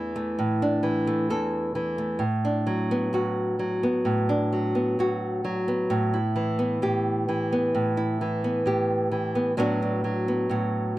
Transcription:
Already playing: E2 E3 A3 D4 E4
0.16 A3
0.39 A2
0.62 D4
0.83 E3
1.07 A3
1.30 E2 A4
1.75 E3
1.98 A3
2.19 A2
2.45 D4
2.67 F#3
2.91 B3
3.13 A2 F#4
3.59 F#3
3.83 B3
4.05 A2
4.29 D4
4.52 F#3
4.75 B3
4.99 A2 F#4
5.44 F#3
5.68 B3
5.90 A2
6.14 E4
6.36 E3
6.59 B3
6.82 A2 G4
7.29 E3
7.52 B3
7.75 A2
7.97 E4
8.21 E3
8.44 B3
8.66 A2 G4
9.12 E3
9.35 B3
9.57 A2 F#3 B3 D4 F#4
9.82 D4
10.04 F#3
10.28 B3
10.49 A2 F#4

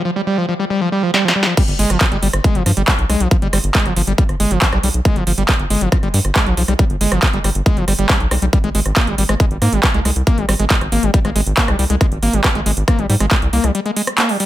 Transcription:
0.05 F3
0.16 G3
0.27 G3
0.38 F3
0.49 F3
0.59 G3
0.70 G3
0.81 F3
0.92 G3
1.03 F3
1.14 G3, snare
1.25 F3, snare
1.36 G3
1.43 F3, snare
1.57 G3, kick, closed hi-hat, crash
1.68 G1, closed hi-hat
1.79 G1 G#3, open hi-hat
1.90 G1 F3, cross-stick, closed hi-hat
2.01 F3, kick, clap, closed hi-hat
2.12 G1 G3, closed hi-hat
2.23 G1 G3, open hi-hat
2.33 G1, cross-stick, closed hi-hat
2.44 G#3, kick, closed hi-hat
2.55 G1 F3, closed hi-hat
2.66 G2 F3, cross-stick, open hi-hat
2.77 G1 G3, closed hi-hat
2.88 G3, kick, clap, closed hi-hat
2.99 B1, closed hi-hat
3.10 B1 G#3, cross-stick, open hi-hat
3.20 B1 F3, closed hi-hat
3.31 F3, kick, closed hi-hat
3.42 G1 G3, closed hi-hat
3.53 G1 G3, cross-stick, open hi-hat
3.64 G1, closed hi-hat
3.75 G#3, kick, clap, closed hi-hat
3.86 G1 F3, cross-stick, closed hi-hat
3.96 G1 F3, open hi-hat
4.07 G1 G3, closed hi-hat
4.18 G3, kick, closed hi-hat
4.29 G1, cross-stick, closed hi-hat
4.40 G1 G#3, open hi-hat
4.51 G1 F3, closed hi-hat
4.62 F3, kick, clap, closed hi-hat
4.73 B1 G3, cross-stick, closed hi-hat
4.83 B1 G3, open hi-hat
4.94 B1, closed hi-hat
5.05 G#3, kick, cross-stick, closed hi-hat
5.16 G1 F3, closed hi-hat
5.27 G1 F3, open hi-hat
5.38 G1 G3, closed hi-hat
5.49 G3, kick, cross-stick, clap, closed hi-hat
5.60 G1, closed hi-hat
5.70 G1 G#3, open hi-hat
5.81 G1 F3, closed hi-hat
5.92 F3, kick, cross-stick, closed hi-hat
6.03 G1 G3, closed hi-hat
6.14 G2 G3, open hi-hat
6.25 G1, cross-stick, closed hi-hat
6.36 G#3, kick, clap, closed hi-hat
6.46 B1 F3, closed hi-hat
6.57 B1 F3, open hi-hat
6.68 B1 G3, cross-stick, closed hi-hat
6.79 G3, kick, closed hi-hat
6.90 G1, closed hi-hat
7.01 G1 G#3, open hi-hat
7.12 G1 F3, cross-stick, closed hi-hat
7.23 F3, kick, clap, closed hi-hat
7.33 G1 G3, closed hi-hat
7.44 G1 G3, cross-stick, open hi-hat
7.55 G1, closed hi-hat
7.66 G#3, kick, closed hi-hat
7.77 G1 F3, closed hi-hat
7.88 G1 G3, cross-stick, open hi-hat
7.99 G1 G3, closed hi-hat
8.09 G3, kick, clap, closed hi-hat
8.20 B1, closed hi-hat
8.31 B1 G3, cross-stick, open hi-hat
8.42 B1 G3, closed hi-hat
8.53 G3, kick, closed hi-hat
8.64 G#1 G#3, closed hi-hat
8.75 G#1 G#3, open hi-hat
8.86 G#1, cross-stick, closed hi-hat
8.96 A#3, kick, clap, closed hi-hat
9.07 G#1 G3, closed hi-hat
9.18 G#1 G3, open hi-hat
9.29 G#1 G#3, cross-stick, closed hi-hat
9.40 G#3, kick, closed hi-hat
9.51 G#1, closed hi-hat
9.62 G#2 A#3, cross-stick, open hi-hat
9.73 G#1 G3, closed hi-hat
9.83 G3, kick, clap, closed hi-hat
9.94 C2 G#3, closed hi-hat
10.05 C2 G#3, cross-stick, open hi-hat
10.16 C2, closed hi-hat
10.27 A#3, kick, closed hi-hat
10.38 G#1 G3, closed hi-hat
10.49 G#1 G3, cross-stick, open hi-hat
10.60 G#1 G#3, closed hi-hat
10.70 G#3, kick, clap, closed hi-hat
10.81 G#1, cross-stick, closed hi-hat
10.92 G#1 A#3, open hi-hat
11.03 G#1 G3, closed hi-hat
11.14 G3, kick, closed hi-hat
11.25 G#1 G#3, cross-stick, closed hi-hat
11.36 G#1 G#3, open hi-hat
11.46 G#1, closed hi-hat
11.57 A#3, kick, clap, closed hi-hat
11.68 C2 G3, cross-stick, closed hi-hat
11.79 C2 G3, open hi-hat
11.90 C2 G#3, closed hi-hat
12.01 G#3, kick, cross-stick, closed hi-hat
12.12 G#1, closed hi-hat
12.23 G#1 A#3, open hi-hat
12.33 G#1 G3, closed hi-hat
12.44 G3, kick, cross-stick, clap, closed hi-hat
12.55 G#1 G#3, closed hi-hat
12.66 G#1 G#3, open hi-hat
12.77 G#1, closed hi-hat
12.88 A#3, kick, cross-stick, closed hi-hat
12.99 G#1 G3, closed hi-hat
13.09 G#2 G3, open hi-hat
13.20 G#1 G#3, cross-stick, closed hi-hat
13.31 G#3, kick, clap, closed hi-hat
13.42 C2, closed hi-hat
13.53 C2 A#3, open hi-hat
13.64 C2 G3, cross-stick, closed hi-hat
13.75 G3, closed hi-hat
13.86 G#3, closed hi-hat
13.96 G#3, open hi-hat
14.07 cross-stick, closed hi-hat
14.18 A#3, clap, closed hi-hat
14.29 G3, open hi-hat
14.40 G3, open hi-hat

